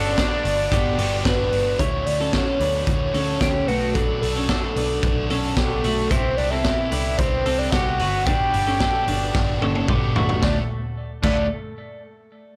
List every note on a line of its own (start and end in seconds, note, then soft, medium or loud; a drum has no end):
0.00 0.24 G1 medium
0.00 0.17 B3 soft
0.00 0.18 C#4 medium
0.00 0.18 D4 soft
0.00 1.49 D4 loud
0.00 0.18 F#4 medium
0.00 0.18 A4 medium
0.00 1.22 D5 loud
0.17 0.44 G3 medium
0.17 0.45 B3 medium
0.17 0.69 D4 medium
0.17 0.44 D4 medium
0.17 0.43 F#4 medium
0.17 0.69 B4 medium
0.17 kick loud
0.17 snare loud
0.17 hi-hat pedal medium
0.17 ride medium
0.44 0.67 G1 loud
0.44 0.71 B3 medium
0.44 0.71 D4 medium
0.44 0.71 F#4 medium
0.44 open hi-hat medium
0.71 0.94 G1 loud
0.71 0.98 G3 medium
0.71 0.99 B3 medium
0.71 0.98 D4 loud
0.71 0.96 F#4 loud
0.71 0.98 G4 medium
0.71 kick loud
0.71 hi-hat pedal medium
0.71 ride medium
0.97 1.21 G1 loud
0.97 1.26 B3 medium
0.97 1.24 B3 medium
0.97 1.25 D4 medium
0.97 1.25 F#4 medium
0.97 1.26 G4 medium
0.97 open hi-hat medium
1.24 1.47 G1 medium
1.24 1.52 G3 medium
1.24 1.53 B3 medium
1.24 1.52 D4 medium
1.24 1.77 D4 medium
1.24 1.50 F#4 medium
1.24 1.80 B4 loud
1.24 1.77 B4 medium
1.24 kick loud
1.24 snare loud
1.24 hi-hat pedal medium
1.24 ride medium
1.51 1.75 G1 medium
1.51 1.80 B3 soft
1.51 1.80 D4 medium
1.51 1.79 F#4 medium
1.51 open hi-hat medium
1.79 2.02 D2 loud
1.79 2.06 D3 medium
1.79 2.07 E3 medium
1.79 2.07 A3 medium
1.79 2.07 C#4 medium
1.79 2.18 E4 medium
1.79 2.05 F#4 medium
1.79 2.08 C#5 loud
1.79 2.18 C#5 medium
1.79 kick loud
1.79 closed hi-hat medium
2.06 2.40 D2 medium
2.06 2.33 A3 soft
2.06 2.33 C#4 soft
2.06 2.33 F#4 medium
2.06 2.34 D5 loud
2.06 open hi-hat medium
2.21 2.34 C#4 medium
2.21 2.33 A4 medium
2.32 2.60 D3 medium
2.32 2.61 E3 medium
2.32 2.61 A3 medium
2.32 2.60 C#4 medium
2.32 2.61 C#4 medium
2.32 2.58 F#4 medium
2.32 2.61 A4 medium
2.32 2.86 C#5 loud
2.32 kick medium
2.32 snare loud
2.32 closed hi-hat medium
2.60 2.82 D2 medium
2.60 2.87 A3 soft
2.60 2.88 C#4 soft
2.60 3.12 D4 medium
2.60 2.87 F#4 soft
2.60 3.12 B4 medium
2.60 open hi-hat medium
2.86 3.09 D2 medium
2.86 3.14 E3 medium
2.86 3.15 A3 medium
2.86 3.14 C#4 medium
2.86 3.13 F#4 medium
2.86 3.69 C#5 loud
2.86 kick loud
2.86 closed hi-hat medium
3.14 3.36 D2 loud
3.14 3.41 A3 soft
3.14 3.41 C#4 medium
3.14 3.42 C#4 soft
3.14 3.41 F#4 medium
3.14 3.41 A4 medium
3.14 open hi-hat medium
3.41 3.63 D2 medium
3.41 3.68 D3 medium
3.41 3.69 E3 medium
3.41 3.69 A3 medium
3.41 3.69 C#4 medium
3.41 3.66 F#4 medium
3.41 3.68 G4 medium
3.41 kick loud
3.41 snare loud
3.41 closed hi-hat medium
3.67 4.13 B1 medium
3.67 3.96 A3 medium
3.67 3.95 A3 soft
3.67 3.96 D4 soft
3.67 3.95 F#4 medium
3.67 3.95 B4 medium
3.67 open hi-hat medium
3.94 4.22 B2 medium
3.94 4.23 F#3 medium
3.94 4.23 A3 medium
3.94 4.34 D4 medium
3.94 4.22 D4 medium
3.94 4.20 F#4 medium
3.94 4.21 A4 medium
3.94 4.33 B4 medium
3.94 kick loud
3.94 closed hi-hat medium
4.21 4.55 B1 medium
4.21 4.49 A3 soft
4.21 4.50 D4 soft
4.21 4.49 F#4 medium
4.21 5.26 A4 medium
4.21 open hi-hat medium
4.36 4.50 C#4 medium
4.36 4.48 A4 medium
4.49 4.76 B2 medium
4.49 4.77 F#3 medium
4.49 4.77 A3 medium
4.49 4.76 D4 medium
4.49 4.74 F#4 medium
4.49 4.76 A4 medium
4.49 kick loud
4.49 snare loud
4.49 closed hi-hat medium
4.75 4.98 B1 medium
4.75 5.03 A3 soft
4.75 5.04 D4 soft
4.75 5.28 D4 medium
4.75 5.03 F#4 medium
4.75 5.27 B4 medium
4.75 open hi-hat medium
5.02 5.25 B1 medium
5.02 5.30 F#3 medium
5.02 5.31 A3 medium
5.02 5.30 D4 medium
5.02 5.28 F#4 medium
5.02 kick loud
5.02 closed hi-hat medium
5.30 5.52 B1 medium
5.30 5.57 A3 soft
5.30 5.58 C#4 medium
5.30 5.57 D4 medium
5.30 5.57 F#4 medium
5.30 5.57 A4 medium
5.30 open hi-hat medium
5.56 5.79 B1 medium
5.56 5.84 B2 medium
5.56 5.84 F#3 medium
5.56 6.12 A3 medium
5.56 5.84 A3 medium
5.56 5.85 B3 medium
5.56 5.84 D4 medium
5.56 5.82 F#4 medium
5.56 5.84 G4 medium
5.56 6.12 A4 medium
5.56 kick loud
5.56 snare loud
5.56 closed hi-hat medium
5.84 6.07 B1 medium
5.84 6.12 A3 medium
5.84 6.12 A3 soft
5.84 6.12 D4 soft
5.84 6.11 F#4 soft
5.84 6.11 F#4 medium
5.84 open hi-hat medium
6.10 6.33 C2 loud
6.10 6.38 C3 medium
6.10 6.38 E3 medium
6.10 6.39 B3 medium
6.10 6.36 C4 medium
6.10 6.49 E4 medium
6.10 6.38 E4 medium
6.10 6.36 G4 medium
6.10 6.36 C5 loud
6.10 6.49 C5 medium
6.10 kick loud
6.10 closed hi-hat medium
6.37 6.71 C2 medium
6.37 6.64 B3 soft
6.37 6.52 D4 medium
6.37 6.65 E4 soft
6.37 6.65 G4 medium
6.37 6.52 D5 medium
6.37 open hi-hat medium
6.50 6.65 C4 medium
6.50 7.19 E4 medium
6.50 6.64 A4 medium
6.50 7.19 E5 loud
6.64 6.92 C3 medium
6.64 6.92 E3 medium
6.64 6.92 B3 medium
6.64 6.92 C4 medium
6.64 6.92 E4 medium
6.64 6.90 G4 medium
6.64 6.92 A4 medium
6.64 kick loud
6.64 snare loud
6.64 closed hi-hat medium
6.91 7.14 C2 loud
6.91 7.18 B3 soft
6.91 7.43 D4 medium
6.91 7.19 E4 medium
6.91 7.19 G4 soft
6.91 7.43 B4 medium
6.91 open hi-hat medium
7.18 7.41 C2 loud
7.18 7.46 E3 medium
7.18 7.46 B3 medium
7.18 7.60 C4 medium
7.18 7.46 E4 medium
7.18 7.45 G4 medium
7.18 7.60 C5 loud
7.18 kick loud
7.18 closed hi-hat medium
7.46 7.68 C2 loud
7.46 7.73 B3 soft
7.46 7.73 C4 medium
7.46 7.73 E4 soft
7.46 7.73 G4 medium
7.46 7.73 A4 medium
7.46 open hi-hat medium
7.58 7.73 D4 medium
7.58 7.73 D5 medium
7.71 8.01 C2 medium
7.71 8.00 C3 medium
7.71 8.00 E3 medium
7.71 8.00 B3 medium
7.71 8.01 E4 medium
7.71 8.24 F#4 medium
7.71 8.00 G4 medium
7.71 7.99 G4 medium
7.71 8.25 F#5 loud
7.71 kick loud
7.71 snare loud
7.71 closed hi-hat medium
7.99 8.44 G1 loud
7.99 8.27 B3 medium
7.99 8.26 B3 soft
7.99 8.27 D4 soft
7.99 8.27 F#4 medium
7.99 open hi-hat medium
8.25 8.54 G3 medium
8.25 8.54 B3 medium
8.25 8.66 D4 medium
8.25 8.53 D4 medium
8.25 8.52 F#4 medium
8.25 9.84 G4 loud
8.25 8.65 B4 medium
8.25 9.84 G5 loud
8.25 kick loud
8.25 closed hi-hat medium
8.53 8.87 G1 medium
8.53 8.80 B3 soft
8.53 8.80 D4 soft
8.53 8.80 F#4 medium
8.53 open hi-hat medium
8.67 8.81 C#4 medium
8.67 8.80 A4 medium
8.80 9.07 G3 medium
8.80 9.08 B3 medium
8.80 9.07 D4 medium
8.80 9.06 F#4 medium
8.80 9.08 A4 medium
8.80 kick loud
8.80 snare loud
8.80 closed hi-hat medium
9.07 9.30 G1 loud
9.07 9.34 B3 medium
9.07 9.35 D4 medium
9.07 9.59 D4 medium
9.07 9.34 F#4 medium
9.07 9.59 B4 medium
9.07 open hi-hat medium
9.34 9.57 G1 medium
9.34 9.61 G3 medium
9.34 9.62 B3 medium
9.34 9.62 D4 medium
9.34 9.60 F#4 medium
9.34 kick loud
9.34 snare medium
9.61 9.84 G1 loud
9.61 9.88 B3 medium
9.61 9.89 C#4 medium
9.61 9.89 D4 medium
9.61 9.88 F#4 medium
9.61 9.89 A4 medium
9.61 high tom medium
9.75 high tom medium
9.88 10.11 G1 medium
9.88 10.16 G3 medium
9.88 10.16 B3 medium
9.88 10.16 D4 loud
9.88 10.14 F#4 loud
9.88 10.16 G4 medium
9.88 kick loud
9.88 mid tom medium
10.15 10.38 G1 medium
10.15 10.42 A3 medium
10.15 10.43 B3 soft
10.15 10.43 D4 medium
10.15 10.42 F#4 medium
10.15 10.43 F#4 medium
10.15 floor tom loud
10.29 floor tom medium
10.42 10.58 D2 loud
10.42 10.59 D3 medium
10.42 10.59 E3 medium
10.42 10.58 A3 medium
10.42 10.59 A3 medium
10.42 10.60 C#4 medium
10.42 10.58 D4 medium
10.42 10.60 F#4 medium
10.42 10.58 D5 medium
10.42 kick loud
10.42 snare medium
11.22 11.48 D2 medium
11.22 11.45 D3 medium
11.22 11.45 E3 medium
11.22 11.49 A3 medium
11.22 11.45 A3 loud
11.22 11.46 C#4 medium
11.22 11.48 D4 medium
11.22 11.46 F#4 medium
11.22 11.49 D5 medium
11.22 kick loud
11.22 crash medium